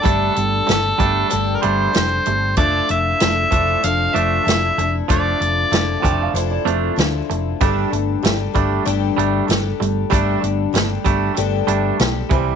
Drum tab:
HH |xxxxxxxx|xxxxxxxx|xxxxxxxx|xxxxxxxx|
SD |--o---o-|--o---o-|--o---o-|--o---o-|
BD |o--o----|o--o----|o--o----|o--o----|

HH |xxxxxxxx|
SD |--o---o-|
BD |o--o---o|